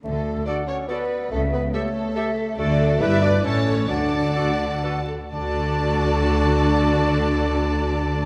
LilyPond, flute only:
\new Staff \with { instrumentName = "Flute" } { \time 3/4 \key d \major \tempo 4 = 131 a'4 fis''4 d''4 | e''4 cis''4 e''4 | d''4 b'4 a'4 | fis''2~ fis''8 r8 |
a''2.~ | a''2. | }